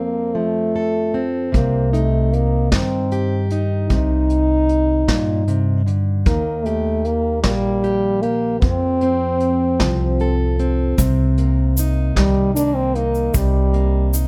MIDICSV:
0, 0, Header, 1, 5, 480
1, 0, Start_track
1, 0, Tempo, 787402
1, 937, Time_signature, 6, 3, 24, 8
1, 8703, End_track
2, 0, Start_track
2, 0, Title_t, "French horn"
2, 0, Program_c, 0, 60
2, 0, Note_on_c, 0, 58, 67
2, 215, Note_on_c, 0, 57, 79
2, 224, Note_off_c, 0, 58, 0
2, 756, Note_off_c, 0, 57, 0
2, 945, Note_on_c, 0, 58, 65
2, 1180, Note_on_c, 0, 57, 70
2, 1190, Note_off_c, 0, 58, 0
2, 1418, Note_on_c, 0, 58, 63
2, 1427, Note_off_c, 0, 57, 0
2, 1658, Note_off_c, 0, 58, 0
2, 1662, Note_on_c, 0, 60, 67
2, 2116, Note_off_c, 0, 60, 0
2, 2374, Note_on_c, 0, 63, 90
2, 3552, Note_off_c, 0, 63, 0
2, 3819, Note_on_c, 0, 58, 78
2, 4048, Note_on_c, 0, 57, 68
2, 4057, Note_off_c, 0, 58, 0
2, 4295, Note_on_c, 0, 58, 72
2, 4304, Note_off_c, 0, 57, 0
2, 4527, Note_off_c, 0, 58, 0
2, 4531, Note_on_c, 0, 55, 74
2, 5010, Note_on_c, 0, 58, 81
2, 5020, Note_off_c, 0, 55, 0
2, 5240, Note_off_c, 0, 58, 0
2, 5244, Note_on_c, 0, 60, 89
2, 6428, Note_off_c, 0, 60, 0
2, 7412, Note_on_c, 0, 55, 86
2, 7639, Note_off_c, 0, 55, 0
2, 7650, Note_on_c, 0, 62, 93
2, 7770, Note_on_c, 0, 60, 87
2, 7779, Note_off_c, 0, 62, 0
2, 7894, Note_on_c, 0, 58, 77
2, 7904, Note_off_c, 0, 60, 0
2, 8137, Note_on_c, 0, 55, 74
2, 8146, Note_off_c, 0, 58, 0
2, 8618, Note_off_c, 0, 55, 0
2, 8703, End_track
3, 0, Start_track
3, 0, Title_t, "Steel-string acoustic guitar"
3, 0, Program_c, 1, 25
3, 0, Note_on_c, 1, 41, 62
3, 0, Note_on_c, 1, 60, 39
3, 213, Note_on_c, 1, 53, 46
3, 461, Note_on_c, 1, 69, 57
3, 694, Note_off_c, 1, 60, 0
3, 696, Note_on_c, 1, 60, 47
3, 907, Note_off_c, 1, 53, 0
3, 910, Note_off_c, 1, 69, 0
3, 928, Note_on_c, 1, 48, 61
3, 936, Note_off_c, 1, 41, 0
3, 1175, Note_off_c, 1, 60, 0
3, 1178, Note_on_c, 1, 63, 49
3, 1653, Note_off_c, 1, 48, 0
3, 1659, Note_on_c, 1, 51, 44
3, 1903, Note_on_c, 1, 67, 58
3, 2142, Note_off_c, 1, 63, 0
3, 2144, Note_on_c, 1, 63, 48
3, 2379, Note_on_c, 1, 48, 58
3, 3093, Note_off_c, 1, 48, 0
3, 3095, Note_on_c, 1, 46, 53
3, 3337, Note_off_c, 1, 46, 0
3, 3340, Note_on_c, 1, 48, 54
3, 3572, Note_off_c, 1, 48, 0
3, 3575, Note_on_c, 1, 50, 57
3, 3593, Note_off_c, 1, 63, 0
3, 3814, Note_off_c, 1, 51, 0
3, 3817, Note_off_c, 1, 50, 0
3, 3821, Note_on_c, 1, 51, 58
3, 4037, Note_off_c, 1, 67, 0
3, 4063, Note_on_c, 1, 67, 55
3, 4539, Note_on_c, 1, 58, 48
3, 4771, Note_off_c, 1, 67, 0
3, 4778, Note_on_c, 1, 67, 53
3, 5012, Note_off_c, 1, 67, 0
3, 5019, Note_on_c, 1, 67, 56
3, 5231, Note_off_c, 1, 58, 0
3, 5231, Note_off_c, 1, 67, 0
3, 5258, Note_on_c, 1, 41, 60
3, 5261, Note_off_c, 1, 51, 0
3, 5503, Note_on_c, 1, 60, 45
3, 5982, Note_on_c, 1, 53, 52
3, 6224, Note_on_c, 1, 69, 60
3, 6452, Note_off_c, 1, 60, 0
3, 6460, Note_on_c, 1, 60, 49
3, 6672, Note_off_c, 1, 53, 0
3, 6673, Note_off_c, 1, 69, 0
3, 6699, Note_off_c, 1, 41, 0
3, 6700, Note_on_c, 1, 48, 71
3, 6939, Note_on_c, 1, 58, 42
3, 7186, Note_off_c, 1, 60, 0
3, 7189, Note_on_c, 1, 63, 48
3, 7420, Note_off_c, 1, 48, 0
3, 7420, Note_on_c, 1, 51, 48
3, 7657, Note_off_c, 1, 58, 0
3, 7659, Note_on_c, 1, 58, 53
3, 7895, Note_off_c, 1, 63, 0
3, 7897, Note_on_c, 1, 63, 52
3, 8131, Note_on_c, 1, 48, 63
3, 8149, Note_off_c, 1, 58, 0
3, 8373, Note_on_c, 1, 58, 46
3, 8616, Note_off_c, 1, 63, 0
3, 8618, Note_on_c, 1, 63, 49
3, 8703, Note_off_c, 1, 48, 0
3, 8703, Note_off_c, 1, 51, 0
3, 8703, Note_off_c, 1, 58, 0
3, 8703, Note_off_c, 1, 63, 0
3, 8703, End_track
4, 0, Start_track
4, 0, Title_t, "Upright bass"
4, 0, Program_c, 2, 32
4, 940, Note_on_c, 2, 36, 87
4, 1635, Note_off_c, 2, 36, 0
4, 1659, Note_on_c, 2, 43, 73
4, 2355, Note_off_c, 2, 43, 0
4, 2379, Note_on_c, 2, 36, 83
4, 3075, Note_off_c, 2, 36, 0
4, 3102, Note_on_c, 2, 43, 72
4, 3796, Note_off_c, 2, 43, 0
4, 3816, Note_on_c, 2, 39, 88
4, 4513, Note_off_c, 2, 39, 0
4, 4537, Note_on_c, 2, 34, 71
4, 5235, Note_off_c, 2, 34, 0
4, 5256, Note_on_c, 2, 41, 81
4, 5954, Note_off_c, 2, 41, 0
4, 5976, Note_on_c, 2, 36, 79
4, 6674, Note_off_c, 2, 36, 0
4, 6696, Note_on_c, 2, 36, 86
4, 7394, Note_off_c, 2, 36, 0
4, 7417, Note_on_c, 2, 36, 84
4, 8114, Note_off_c, 2, 36, 0
4, 8136, Note_on_c, 2, 36, 88
4, 8703, Note_off_c, 2, 36, 0
4, 8703, End_track
5, 0, Start_track
5, 0, Title_t, "Drums"
5, 940, Note_on_c, 9, 36, 72
5, 941, Note_on_c, 9, 42, 61
5, 1001, Note_off_c, 9, 36, 0
5, 1002, Note_off_c, 9, 42, 0
5, 1183, Note_on_c, 9, 42, 48
5, 1244, Note_off_c, 9, 42, 0
5, 1422, Note_on_c, 9, 42, 40
5, 1483, Note_off_c, 9, 42, 0
5, 1657, Note_on_c, 9, 38, 83
5, 1657, Note_on_c, 9, 42, 64
5, 1659, Note_on_c, 9, 36, 59
5, 1718, Note_off_c, 9, 38, 0
5, 1718, Note_off_c, 9, 42, 0
5, 1720, Note_off_c, 9, 36, 0
5, 1898, Note_on_c, 9, 42, 46
5, 1959, Note_off_c, 9, 42, 0
5, 2135, Note_on_c, 9, 42, 45
5, 2196, Note_off_c, 9, 42, 0
5, 2377, Note_on_c, 9, 42, 65
5, 2379, Note_on_c, 9, 36, 78
5, 2438, Note_off_c, 9, 42, 0
5, 2440, Note_off_c, 9, 36, 0
5, 2619, Note_on_c, 9, 42, 44
5, 2680, Note_off_c, 9, 42, 0
5, 2860, Note_on_c, 9, 42, 46
5, 2921, Note_off_c, 9, 42, 0
5, 3099, Note_on_c, 9, 36, 61
5, 3099, Note_on_c, 9, 38, 82
5, 3099, Note_on_c, 9, 42, 65
5, 3160, Note_off_c, 9, 36, 0
5, 3160, Note_off_c, 9, 38, 0
5, 3160, Note_off_c, 9, 42, 0
5, 3338, Note_on_c, 9, 42, 46
5, 3399, Note_off_c, 9, 42, 0
5, 3580, Note_on_c, 9, 42, 47
5, 3641, Note_off_c, 9, 42, 0
5, 3815, Note_on_c, 9, 42, 59
5, 3817, Note_on_c, 9, 36, 79
5, 3876, Note_off_c, 9, 42, 0
5, 3878, Note_off_c, 9, 36, 0
5, 4057, Note_on_c, 9, 42, 44
5, 4118, Note_off_c, 9, 42, 0
5, 4296, Note_on_c, 9, 42, 42
5, 4357, Note_off_c, 9, 42, 0
5, 4532, Note_on_c, 9, 38, 81
5, 4532, Note_on_c, 9, 42, 62
5, 4536, Note_on_c, 9, 36, 56
5, 4593, Note_off_c, 9, 38, 0
5, 4593, Note_off_c, 9, 42, 0
5, 4597, Note_off_c, 9, 36, 0
5, 4777, Note_on_c, 9, 42, 38
5, 4838, Note_off_c, 9, 42, 0
5, 5014, Note_on_c, 9, 42, 41
5, 5075, Note_off_c, 9, 42, 0
5, 5252, Note_on_c, 9, 42, 54
5, 5256, Note_on_c, 9, 36, 86
5, 5313, Note_off_c, 9, 42, 0
5, 5317, Note_off_c, 9, 36, 0
5, 5492, Note_on_c, 9, 42, 43
5, 5553, Note_off_c, 9, 42, 0
5, 5732, Note_on_c, 9, 42, 39
5, 5793, Note_off_c, 9, 42, 0
5, 5972, Note_on_c, 9, 38, 80
5, 5972, Note_on_c, 9, 42, 60
5, 5975, Note_on_c, 9, 36, 60
5, 6033, Note_off_c, 9, 38, 0
5, 6033, Note_off_c, 9, 42, 0
5, 6036, Note_off_c, 9, 36, 0
5, 6214, Note_on_c, 9, 42, 41
5, 6275, Note_off_c, 9, 42, 0
5, 6456, Note_on_c, 9, 42, 41
5, 6517, Note_off_c, 9, 42, 0
5, 6692, Note_on_c, 9, 42, 65
5, 6695, Note_on_c, 9, 36, 88
5, 6698, Note_on_c, 9, 82, 71
5, 6753, Note_off_c, 9, 42, 0
5, 6756, Note_off_c, 9, 36, 0
5, 6759, Note_off_c, 9, 82, 0
5, 6935, Note_on_c, 9, 42, 54
5, 6996, Note_off_c, 9, 42, 0
5, 7173, Note_on_c, 9, 42, 46
5, 7176, Note_on_c, 9, 82, 84
5, 7234, Note_off_c, 9, 42, 0
5, 7237, Note_off_c, 9, 82, 0
5, 7415, Note_on_c, 9, 36, 61
5, 7416, Note_on_c, 9, 38, 82
5, 7416, Note_on_c, 9, 42, 66
5, 7476, Note_off_c, 9, 36, 0
5, 7477, Note_off_c, 9, 38, 0
5, 7477, Note_off_c, 9, 42, 0
5, 7657, Note_on_c, 9, 42, 45
5, 7659, Note_on_c, 9, 82, 88
5, 7718, Note_off_c, 9, 42, 0
5, 7720, Note_off_c, 9, 82, 0
5, 7896, Note_on_c, 9, 42, 46
5, 7957, Note_off_c, 9, 42, 0
5, 8014, Note_on_c, 9, 82, 28
5, 8075, Note_off_c, 9, 82, 0
5, 8134, Note_on_c, 9, 82, 96
5, 8135, Note_on_c, 9, 36, 90
5, 8136, Note_on_c, 9, 42, 59
5, 8194, Note_off_c, 9, 82, 0
5, 8196, Note_off_c, 9, 36, 0
5, 8197, Note_off_c, 9, 42, 0
5, 8375, Note_on_c, 9, 42, 44
5, 8436, Note_off_c, 9, 42, 0
5, 8615, Note_on_c, 9, 42, 43
5, 8617, Note_on_c, 9, 82, 93
5, 8676, Note_off_c, 9, 42, 0
5, 8678, Note_off_c, 9, 82, 0
5, 8703, End_track
0, 0, End_of_file